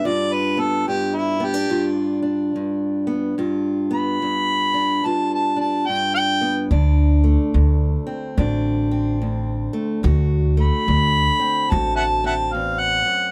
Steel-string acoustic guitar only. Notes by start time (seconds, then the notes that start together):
Already playing: D4
0.05 G2 F4
0.57 B3
0.88 G2
1.40 B3
1.54 D4
1.69 G2 F4
2.22 D4
2.56 G2
3.07 B3
3.38 G2 F4
3.91 B3
4.22 G2
4.74 D4
5.04 G2 F4
5.56 D4
5.89 G2
6.41 B3
6.71 D2 D4
7.24 A3
7.54 D2
8.07 C4
8.37 D2 D4
8.91 C4
9.22 D2
9.73 A3
10.03 D2 F#4
10.57 A3
10.88 D2
11.40 C4
11.70 D2 F#4
12.24 C4
12.55 E2
13.05 F#2